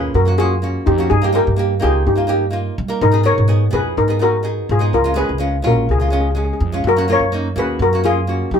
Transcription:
0.00 0.11 D#2 loud
0.00 0.12 A#3 medium
0.00 0.12 C#4 medium
0.00 0.13 F4 medium
0.00 0.14 G#4 medium
0.00 0.14 B4 loud
0.14 0.76 F#2 medium
0.14 0.37 F#4 medium
0.14 0.37 A#4 loud
0.25 0.33 A#3 medium
0.25 0.34 C#4 medium
0.25 0.34 F#4 medium
0.38 0.53 A#3 medium
0.38 0.53 C#4 medium
0.38 0.83 F4 medium
0.38 0.54 F#4 medium
0.38 0.88 G#4 loud
0.62 0.84 A#3 medium
0.62 0.84 C#4 medium
0.62 0.85 F#4 medium
0.86 1.07 F2 loud
0.86 1.09 D#4 medium
0.86 1.12 G4 medium
0.98 1.10 A#3 medium
0.98 1.11 C#4 medium
0.98 1.11 F#4 medium
1.10 1.42 G2 loud
1.10 1.33 D#4 medium
1.10 1.35 G#4 loud
1.22 1.29 A#3 medium
1.22 1.30 D#4 medium
1.22 1.31 G4 medium
1.32 1.48 A#3 medium
1.32 1.49 D#4 medium
1.32 1.49 G4 loud
1.32 1.79 G4 medium
1.32 1.84 A#4 medium
1.47 1.77 G2 loud
1.56 1.72 A#3 medium
1.56 1.73 D#4 medium
1.56 1.74 G4 medium
1.80 2.03 C#2 medium
1.80 2.03 A#3 medium
1.80 2.03 D#4 medium
1.80 2.05 F4 medium
1.80 2.04 G4 medium
1.80 2.07 G#4 medium
2.06 2.67 G2 medium
2.06 2.75 D#4 medium
2.06 2.74 G4 medium
2.15 2.24 A#3 medium
2.15 2.25 D#4 medium
2.15 2.25 F4 medium
2.27 2.43 A#3 medium
2.27 2.44 D#4 medium
2.27 2.44 G4 loud
2.50 2.74 A#3 medium
2.50 2.75 D#4 medium
2.50 2.75 F4 medium
2.78 2.98 G3 loud
2.88 3.01 A#3 medium
2.88 3.01 D#4 medium
2.88 3.02 A#4 medium
3.01 3.33 G#2 loud
3.01 3.25 D#4 loud
3.01 3.25 A#4 loud
3.12 3.20 B3 medium
3.12 3.20 D#4 medium
3.12 3.21 G#4 medium
3.23 3.39 B3 medium
3.23 3.40 D#4 medium
3.23 3.40 G#4 medium
3.23 3.71 A#4 medium
3.23 3.75 C#5 loud
3.38 3.68 G#2 loud
3.48 3.63 B3 medium
3.48 3.64 D#4 medium
3.48 3.64 G#4 medium
3.71 3.94 F2 loud
3.71 3.94 B3 medium
3.71 3.94 D#4 medium
3.71 3.95 G#4 medium
3.71 3.98 B4 loud
3.75 3.97 G#4 medium
3.97 4.58 G#2 medium
3.97 4.20 D#4 medium
3.97 4.21 A#4 loud
4.08 4.16 B3 medium
4.08 4.17 D#4 medium
4.08 4.17 G#4 medium
4.19 4.35 B3 medium
4.19 4.36 D#4 medium
4.19 4.67 F#4 medium
4.19 4.36 G#4 medium
4.19 4.67 A#4 loud
4.43 4.66 B3 medium
4.43 4.66 D#4 medium
4.43 4.67 G#4 medium
4.69 4.90 G#2 loud
4.69 4.93 F4 medium
4.69 4.93 G#4 loud
4.79 4.92 B3 medium
4.79 4.93 D#4 medium
4.79 4.93 G#4 medium
4.93 5.24 C#2 medium
4.93 5.16 F4 medium
4.93 5.16 A#4 loud
5.04 5.12 G#3 medium
5.04 5.12 C#4 medium
5.04 5.12 F4 medium
5.14 5.30 G#3 medium
5.14 5.31 C#4 medium
5.14 5.31 G#4 loud
5.14 5.62 G#4 medium
5.14 5.67 B4 loud
5.29 5.59 C#2 medium
5.38 5.54 G#3 medium
5.38 5.55 C#4 medium
5.38 5.55 F4 medium
5.62 5.85 A#1 loud
5.62 5.85 G#3 medium
5.62 5.86 C#4 medium
5.62 5.86 F4 medium
5.62 5.77 F#4 medium
5.67 5.77 A#4 medium
5.89 6.50 C#2 medium
5.89 5.97 F4 medium
5.89 5.97 G#4 medium
5.99 6.07 G#3 medium
5.99 6.08 C#4 medium
5.99 6.08 F4 medium
5.99 6.05 G#4 medium
6.08 6.26 G#3 medium
6.08 6.27 C#4 medium
6.08 6.13 G#4 medium
6.13 6.27 F4 medium
6.13 6.20 G#4 soft
6.21 6.27 G#4 medium
6.31 6.57 G#3 medium
6.31 6.36 G#4 soft
6.36 6.58 C#4 medium
6.36 6.58 G#4 medium
6.36 6.43 G#4 medium
6.44 6.50 G#4 medium
6.53 6.58 G#4 medium
6.60 6.81 F2 loud
6.72 6.84 G#3 medium
6.72 6.85 C#4 medium
6.72 6.85 F4 medium
6.84 7.15 F#2 loud
6.84 7.08 F#4 medium
6.89 7.09 A#4 loud
6.96 7.04 A#3 medium
6.96 7.04 C#4 medium
6.96 7.05 F#4 medium
7.08 7.23 A#3 medium
7.08 7.23 C#4 medium
7.08 7.24 F4 loud
7.08 7.54 A#4 medium
7.13 7.55 C#5 loud
7.19 7.50 F#2 medium
7.32 7.47 A#3 medium
7.32 7.47 C#4 medium
7.32 7.48 D#4 medium
7.56 7.76 D#2 loud
7.56 7.78 A#3 medium
7.56 7.78 C#4 medium
7.56 7.79 F#4 medium
7.56 7.79 G#4 medium
7.56 7.82 B4 loud
7.79 8.41 F#2 loud
7.79 8.03 F#4 medium
7.79 8.04 A#4 loud
7.93 8.00 A#3 medium
7.93 8.00 C#4 medium
7.93 8.01 F#4 medium
8.04 8.19 A#3 medium
8.04 8.19 C#4 medium
8.04 8.49 F4 medium
8.04 8.19 F4 medium
8.04 8.54 G#4 loud
8.27 8.49 A#3 medium
8.27 8.50 C#4 medium
8.27 8.50 F#4 medium
8.51 8.60 F#3 medium
8.51 8.60 D#4 medium
8.51 8.60 G4 loud

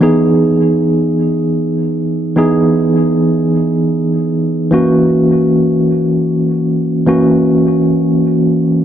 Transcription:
0.01 2.32 E3 medium
0.01 2.33 B3 medium
0.01 2.33 D#4 medium
0.01 2.33 G#4 medium
2.36 4.68 E3 medium
2.36 4.68 B3 medium
2.36 4.68 D#4 medium
2.36 4.69 G#4 medium
4.71 7.03 E3 medium
4.71 7.03 A#3 medium
4.71 7.04 C#4 medium
4.71 7.04 F#4 medium
7.06 8.85 E3 medium
7.06 8.85 A#3 medium
7.06 8.85 C#4 medium
7.06 8.85 F#4 medium

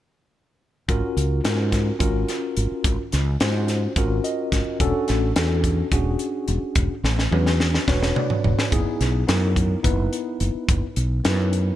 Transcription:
0.88 1.00 G#1 medium
0.88 1.39 C#4 medium
0.88 1.40 F4 medium
0.88 1.40 F#4 medium
0.88 1.40 A#4 medium
0.88 kick medium
0.88 closed hi-hat medium
1.17 1.39 C#2 medium
1.17 closed hi-hat medium
1.44 1.90 G#2 medium
1.44 1.95 C#4 medium
1.44 1.95 F4 medium
1.44 1.96 F#4 medium
1.44 1.96 A#4 medium
1.44 snare loud
1.44 closed hi-hat medium
1.72 kick medium
1.72 snare soft
1.72 closed hi-hat medium
1.99 2.23 G#1 medium
1.99 3.01 C#4 medium
1.99 3.01 F4 medium
1.99 3.02 F#4 medium
1.99 3.02 A#4 medium
1.99 kick medium
1.99 closed hi-hat medium
2.28 snare soft
2.28 closed hi-hat medium
2.57 2.68 G#1 medium
2.57 closed hi-hat medium
2.72 muted fretless electric bass stroke soft
2.84 2.96 G#1 medium
2.84 kick medium
2.84 closed hi-hat medium
3.12 3.36 C#2 medium
3.12 snare soft
3.12 closed hi-hat medium
3.40 3.86 G#2 medium
3.40 3.91 C#4 medium
3.40 3.92 F4 medium
3.40 3.92 F#4 medium
3.40 3.92 C5 medium
3.40 snare medium
3.40 closed hi-hat medium
3.68 snare soft
3.68 closed hi-hat medium
3.96 4.19 G#1 medium
3.96 4.79 C#4 medium
3.96 4.81 F4 medium
3.96 4.79 F#4 medium
3.96 4.81 A#4 medium
3.96 kick medium
3.96 closed hi-hat medium
4.24 4.76 D#5 medium
4.24 closed hi-hat soft
4.52 4.64 G#1 medium
4.52 kick medium
4.52 snare soft
4.52 closed hi-hat soft
4.67 muted fretless electric bass stroke soft
4.80 4.92 E1 medium
4.80 5.31 C#4 medium
4.80 5.31 D4 medium
4.80 5.31 F#4 medium
4.80 5.31 A4 medium
4.80 kick medium
4.80 closed hi-hat medium
5.08 5.32 A1 medium
5.08 snare soft
5.08 closed hi-hat medium
5.36 5.82 E2 medium
5.36 5.87 C#4 medium
5.36 5.87 D4 medium
5.36 5.88 F#4 medium
5.36 5.87 A4 medium
5.36 snare medium
5.36 closed hi-hat medium
5.64 kick medium
5.64 closed hi-hat medium
5.92 6.15 E1 medium
5.92 6.93 C#4 medium
5.92 6.94 D4 medium
5.92 6.94 F#4 medium
5.92 6.94 G#4 medium
5.92 kick medium
5.92 closed hi-hat medium
6.19 closed hi-hat medium
6.48 6.60 E1 medium
6.48 closed hi-hat medium
6.63 muted fretless electric bass stroke soft
6.75 6.87 E1 medium
6.75 kick medium
6.75 closed hi-hat medium
7.04 7.26 A1 medium
7.04 snare medium
7.19 snare soft
7.31 7.77 E2 medium
7.31 7.83 C#4 medium
7.31 7.83 D4 medium
7.31 7.83 F#4 medium
7.31 7.84 B4 medium
7.31 high tom medium
7.46 snare soft
7.60 snare medium
7.74 snare medium
7.88 8.11 E1 medium
7.88 8.72 D4 medium
7.88 8.73 F#4 medium
7.88 8.73 B4 medium
7.88 8.72 C#5 medium
7.88 kick medium
7.88 snare medium
8.03 snare medium
8.16 8.68 D5 medium
8.16 mid tom medium
8.30 floor tom medium
8.44 8.56 E1 medium
8.44 floor tom medium
8.58 muted fretless electric bass stroke soft
8.58 snare medium
8.71 8.84 F#1 medium
8.71 9.22 B3 medium
8.71 9.22 D#4 medium
8.71 9.23 E4 medium
8.71 9.23 G#4 medium
8.71 kick medium
8.71 closed hi-hat medium
9.01 9.23 B1 medium
9.01 snare soft
9.01 closed hi-hat medium
9.27 9.74 F#2 medium
9.27 9.79 B3 medium
9.27 9.79 D#4 medium
9.27 9.79 E4 medium
9.27 9.79 A#4 medium
9.27 snare medium
9.27 closed hi-hat medium
9.56 kick medium
9.56 closed hi-hat soft
9.83 10.07 F#1 medium
9.83 10.85 B3 medium
9.83 10.86 D#4 medium
9.83 10.86 E4 medium
9.83 10.86 B4 medium
9.83 kick medium
9.83 closed hi-hat medium
10.13 closed hi-hat medium
10.40 10.52 F#1 medium
10.40 closed hi-hat medium
10.55 muted fretless electric bass stroke soft
10.69 10.80 F#1 medium
10.69 kick loud
10.69 closed hi-hat medium
10.96 11.19 B1 medium
10.96 closed hi-hat medium
11.24 11.71 F#2 medium
11.24 11.75 B3 medium
11.24 11.76 D#4 medium
11.24 11.76 E4 medium
11.24 11.76 B4 medium
11.24 snare loud
11.24 closed hi-hat medium
11.53 closed hi-hat medium

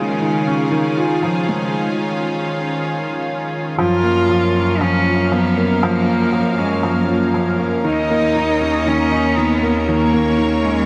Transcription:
0.00 1.74 C#3 medium
0.00 3.74 D#3 medium
0.00 0.21 G#3 medium
0.00 3.74 C#4 medium
0.00 3.74 F4 medium
0.00 3.74 G#4 medium
0.21 0.46 D#3 medium
0.47 0.62 C#4 medium
0.72 0.97 D#3 loud
0.97 1.22 F4 medium
1.23 1.48 F3 medium
1.49 1.73 G#3 medium
3.78 7.82 F#2 medium
3.78 3.93 F3 loud
3.78 10.86 C#4 medium
3.78 4.83 F4 loud
3.78 10.86 A#4 medium
3.78 7.81 F5 medium
4.03 4.28 A#3 medium
4.29 4.53 F3 medium
4.55 4.79 C#4 medium
4.81 5.05 F3 medium
4.81 5.34 C#4 loud
5.06 5.30 F4 medium
5.32 5.55 F3 medium
5.32 5.85 B3 medium
5.58 5.71 A#3 medium
5.83 5.97 F3 loud
5.83 6.60 A#3 loud
6.08 6.32 A#3 medium
6.33 6.57 F3 medium
6.58 6.85 G#3 medium
6.58 6.82 C#4 medium
6.83 7.07 F3 medium
6.83 7.09 A#3 medium
7.08 7.57 A#3 medium
7.08 7.33 F4 medium
7.34 7.58 F3 medium
7.59 7.74 A#3 medium
7.84 10.86 D#2 loud
7.84 7.99 D#3 loud
7.84 8.89 D#4 loud
7.84 9.86 D#5 medium
8.10 8.35 A#3 medium
8.36 8.60 D#3 medium
8.61 8.85 C#4 medium
8.87 9.11 D#3 medium
8.87 9.40 C#4 loud
9.12 9.36 D#4 medium
9.37 9.62 D#3 medium
9.37 9.82 B3 loud
9.63 9.77 A#3 medium
9.82 9.90 B3 medium
9.88 10.03 D#3 loud
9.88 10.66 A#3 loud
9.88 10.86 C#5 medium
10.13 10.38 A#3 medium
10.38 10.63 D#3 medium
10.64 10.86 G#3 medium
10.64 10.86 C#4 medium

